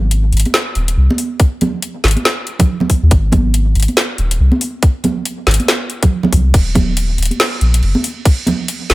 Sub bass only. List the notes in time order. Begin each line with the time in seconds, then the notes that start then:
Already playing: G#1
0.33 G#1
0.76 D#1
0.97 C2
2.04 G#1
3.03 D#2
3.11 G#1
3.75 G#1
4.18 D#1
4.40 C2
5.47 G#1
6.33 C2
6.54 D#1
7.18 D#1
7.61 A#1
7.83 F#1
8.90 D#1